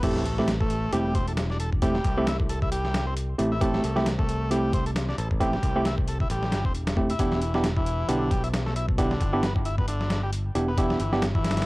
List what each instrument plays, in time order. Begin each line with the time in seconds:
0.03 picked electric bass A1, transistor combo organ A3, tine electric piano A3 C4 E4 G4, kick, closed hi-hat, crash, sub drop
0.16 snare
0.25 transistor combo organ A3, closed hi-hat
0.38 tine electric piano A3 C4 E4 G4, snare
0.48 snare, closed hi-hat
0.60 transistor combo organ A3, kick
0.70 closed hi-hat
0.93 picked electric bass E1, transistor combo organ G3, tine electric piano A3 C4 E4 G4, closed hi-hat
1.15 transistor combo organ C4, kick, closed hi-hat
1.28 transistor combo organ A4, closed hi-hat
1.37 snare, closed hi-hat
1.50 transistor combo organ D4, snare
1.60 transistor combo organ A4, closed hi-hat
1.73 kick
1.82 transistor combo organ G3, tine electric piano A3 C4 E4 G4, kick, closed hi-hat
1.95 snare
2.04 picked electric bass C2, kick, closed hi-hat
2.17 tine electric piano A3 C4 E4 G4
2.27 transistor combo organ E4, snare, closed hi-hat
2.40 kick
2.49 transistor combo organ A4, closed hi-hat
2.62 transistor combo organ E4, kick
2.72 transistor combo organ G3, closed hi-hat
2.85 snare
2.94 snare, closed hi-hat
3.07 transistor combo organ C4
3.17 closed hi-hat
3.38 picked electric bass A1, tine electric piano A3 C4 E4 G4, closed hi-hat
3.52 transistor combo organ E4
3.61 tine electric piano A3 C4 E4 G4, transistor combo organ A3, kick, closed hi-hat
3.74 snare
3.84 picked electric bass C2, transistor combo organ A3, closed hi-hat
3.96 tine electric piano A3 C4 E4 G4, snare
4.06 snare, closed hi-hat
4.19 transistor combo organ A3, kick
4.29 closed hi-hat
4.51 transistor combo organ G3, tine electric piano A3 C4 E4 G4, closed hi-hat
4.73 transistor combo organ C4, kick, closed hi-hat
4.86 transistor combo organ A4, closed hi-hat
4.96 snare, closed hi-hat
5.09 transistor combo organ D4, snare
5.18 picked electric bass A1, transistor combo organ A4, closed hi-hat
5.31 kick
5.40 transistor combo organ G3, tine electric piano A3 C4 E4 G4, kick, closed hi-hat
5.53 snare
5.63 picked electric bass C2, kick, closed hi-hat
5.76 tine electric piano A3 C4 E4 G4
5.85 transistor combo organ E4, snare, closed hi-hat
5.98 kick
6.08 transistor combo organ A4, closed hi-hat
6.20 transistor combo organ E4, kick
6.30 picked electric bass A1, transistor combo organ G3, closed hi-hat
6.43 snare
6.52 picked electric bass G1, snare, closed hi-hat
6.65 picked electric bass E1, transistor combo organ C4, kick
6.75 closed hi-hat
6.87 snare, closed hi-hat
6.97 tine electric piano A3 C4 E4 G4, kick
7.10 transistor combo organ E4, closed hi-hat
7.19 picked electric bass E1, transistor combo organ E3, tine electric piano B3 D4 E4 G4, kick, closed hi-hat
7.32 snare
7.42 transistor combo organ E3, closed hi-hat
7.54 tine electric piano B3 D4 E4 G4, snare
7.64 snare, closed hi-hat
7.77 transistor combo organ E3, kick
7.86 closed hi-hat
8.09 picked electric bass B1, transistor combo organ D3, tine electric piano B3 D4 E4 G4, closed hi-hat
8.31 transistor combo organ G3, kick, closed hi-hat
8.44 transistor combo organ E4, closed hi-hat
8.54 snare, closed hi-hat
8.66 transistor combo organ A3, snare
8.76 transistor combo organ E4, closed hi-hat
8.89 kick
8.98 transistor combo organ D3, tine electric piano B3 D4 E4 G4, kick, closed hi-hat
9.11 snare
9.21 picked electric bass G1, kick, closed hi-hat
9.33 tine electric piano B3 D4 E4 G4
9.43 transistor combo organ B3, snare, closed hi-hat
9.56 kick
9.65 transistor combo organ E4, closed hi-hat
9.78 transistor combo organ B3, kick
9.88 transistor combo organ D3, closed hi-hat
10.01 snare
10.10 snare, closed hi-hat
10.23 transistor combo organ G3
10.33 closed hi-hat
10.55 picked electric bass E1, tine electric piano B3 D4 E4 G4, closed hi-hat
10.68 transistor combo organ B3
10.78 transistor combo organ E3, tine electric piano B3 D4 E4 G4, kick, closed hi-hat
10.90 snare
11.00 picked electric bass G1, transistor combo organ E3, closed hi-hat
11.12 tine electric piano B3 D4 E4 G4, snare
11.22 snare, closed hi-hat
11.35 transistor combo organ E3, kick
11.44 snare, closed hi-hat
11.51 snare, closed hi-hat
11.57 snare, closed hi-hat
11.62 snare, closed hi-hat